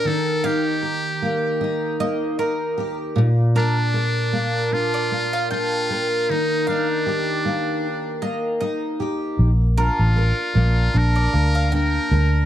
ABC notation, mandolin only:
X:1
M:4/4
L:1/16
Q:"Swing 16ths" 1/4=77
K:Bb
V:1 name="Mandolin"
z2 f z6 z e2 B3 z | z2 B z6 d z f g3 z | z2 f z6 z e2 e3 z | z2 B z6 d z f g3 z |]